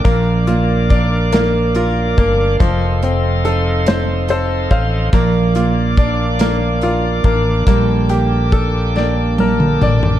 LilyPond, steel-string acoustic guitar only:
\new Staff \with { instrumentName = "Steel-string acoustic guitar" } { \time 6/8 \key bes \major \tempo 4. = 47 <f bes'>8 bes8 d'8 bes8 bes'8 d'8 | <f a'>8 c'8 ees'8 c'8 a'8 ees'8 | <f bes'>8 bes8 d'8 bes8 bes'8 d'8 | <g a'>8 bes8 d'8 bes8 a'8 d'8 | }